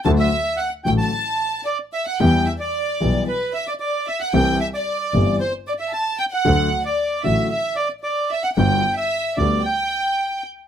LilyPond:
<<
  \new Staff \with { instrumentName = "Bandoneon" } { \time 4/4 \key d \mixolydian \tempo 4 = 113 a''16 e''8. fis''8 g''16 a''4~ a''16 d''8 e''16 fis''16 | g''8 e''16 d''4~ d''16 b'8 e''16 d''16 d''8 e''16 fis''16 | g''8 e''16 d''4~ d''16 c''8 d''16 e''16 a''8 g''16 fis''16~ | fis''8. d''8. e''8 e''8 d''8 d''8 e''16 fis''16 |
g''8. e''8. d''8 g''4. r8 | }
  \new Staff \with { instrumentName = "Violin section" } { \time 4/4 \key d \mixolydian a''16 e''8. fis''8 g''16 a''4~ a''16 d''8 e''16 fis''16 | g''8 e''16 d''4~ d''16 b'8 e''16 d''16 d''8 e''16 fis''16 | g''8 e''16 d''4~ d''16 c''8 d''16 e''16 a''8 g''16 fis''16~ | fis''8. d''8. e''8 e''8 d''8 d''8 e''16 fis''16 |
g''8. e''8. d''8 g''4. r8 | }
  \new Staff \with { instrumentName = "Grand piano" } { \clef bass \time 4/4 \key d \mixolydian <d, d fis a fis'>8 r4 <a,, a, d fis a fis'>8 r2 | <e, e g b g'>8 r4 <b,, b, e g b g'>8 r2 | <c, c e g c' g'>8 r4 <g,, g, e g c' g'>8 r2 | <d, d fis a fis'>8 r4 <a,, a, d fis a fis'>8 r2 |
<g,, g, d g b fis'>8 r4 <d, d g b fis'>8 r2 | }
  \new Staff \with { instrumentName = "Double bass" } { \clef bass \time 4/4 \key d \mixolydian d,8 r4 a,,8 r2 | e,8 r4 b,,8 r2 | c,8 r4 g,,8 r2 | d,8 r4 a,,8 r2 |
g,,8 r4 d,8 r2 | }
>>